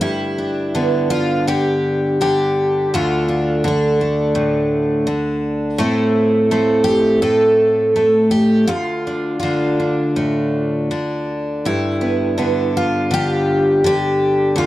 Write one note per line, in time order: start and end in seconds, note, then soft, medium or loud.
0.00 2.87 G2 medium
0.00 0.73 D3 medium
0.00 1.10 E4 medium
0.38 2.87 D4 soft
0.75 1.46 D3 medium
0.75 2.88 B3 soft
1.10 1.47 F4 medium
1.47 2.20 D3 medium
1.47 2.20 G4 medium
2.21 2.92 D3 medium
2.21 2.92 G4 medium
2.94 5.80 D2 medium
2.94 3.63 D3 soft
2.94 4.01 A3 medium
2.94 3.27 D4 soft
2.94 3.65 F4 medium
3.28 3.66 D4 soft
3.64 5.06 D3 medium
3.64 5.81 D4 medium
4.01 5.79 A3 soft
4.35 5.07 A2 medium
5.07 5.78 D3 medium
5.78 7.21 A2 medium
5.78 6.51 A3 medium
5.78 6.51 C4 soft
5.78 7.59 E4 medium
6.51 7.95 A3 medium
6.51 8.65 C4 medium
6.84 7.21 G4 loud
7.22 8.69 A2 medium
7.22 8.31 A4 medium
7.96 8.65 A3 medium
8.31 8.68 G4 medium
8.68 11.64 D2 medium
8.68 9.38 F4 medium
9.07 9.79 D4 soft
9.40 10.90 D3 medium
9.40 11.63 F4 medium
9.80 11.69 D4 soft
10.16 10.90 A2 medium
10.91 12.37 D3 medium
11.65 14.53 G2 medium
11.65 12.75 E4 medium
12.01 12.37 B3 soft
12.38 13.10 D3 medium
12.38 14.53 B3 soft
12.77 13.85 F4 medium
13.11 13.83 D3 medium
13.11 13.85 G4 loud
13.84 14.66 D3 medium
13.84 14.58 G4 loud
14.56 14.66 D2 medium
14.56 14.66 F4 medium